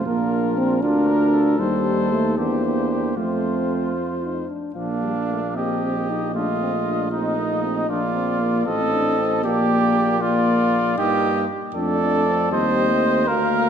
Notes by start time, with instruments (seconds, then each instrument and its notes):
Already playing: trumpet F4
0.05 bass trombone A#1, trombone A#3, french horn D4, cornet A#4
0.57 trombone C4
0.82 bass trombone D2, trombone D4, trumpet F4, french horn F4, cornet A#4
1.08 trumpet A#4
1.34 trumpet A4
1.59 bass trombone D#2, trombone G3, french horn D#4, cornet C5
2.12 trombone A3
2.38 bass trombone E2, trombone A#3, french horn D4, trumpet G4, cornet C5
2.64 trumpet G4
2.91 trumpet G4
3.16 bass trombone F2, trombone A3, french horn C4, trumpet F4, cornet C5
3.97 french horn F4
4.23 french horn D#4
4.49 french horn D4
4.75 bass trombone A#1, french horn F3, trombone A#3, trumpet D4, cornet F5
5.03 french horn G3
5.30 french horn A3
5.56 french horn A#3, trombone C4, trumpet G4, cornet D#5
5.83 french horn C4
5.96 trombone A#3
6.09 french horn D#4
6.34 trombone A3, french horn D4, trumpet F4, cornet D#5
6.60 french horn C4
6.87 french horn D4
7.12 trombone A3, french horn C4, trumpet D#4, cornet D#5
7.37 french horn A#3
7.63 french horn C4
7.88 bass trombone A#1, trombone A#3, french horn D4, trumpet F4, cornet D5
8.15 french horn C4
8.40 french horn A#3
8.66 bass trombone A1, french horn C4, trombone C4, trumpet A4, cornet D#5
8.92 french horn D4
9.18 french horn C4
9.44 bass trombone A#1, trombone A#3, french horn A#3, trumpet G4, cornet D5
10.21 trombone A#3, trumpet F4, cornet D5
10.97 bass trombone G2, trombone A#3, french horn D#4, trumpet G4, cornet D#5
11.74 bass trombone F2, trombone A3, french horn D4, trumpet A4, cornet D5
12.00 french horn D4
12.27 french horn C4
12.51 bass trombone D#2, trombone G3, trumpet C5, cornet D#5
12.90 trombone A3
13.27 bass trombone D2, french horn A#3, trombone A#3, trumpet A#4, cornet F5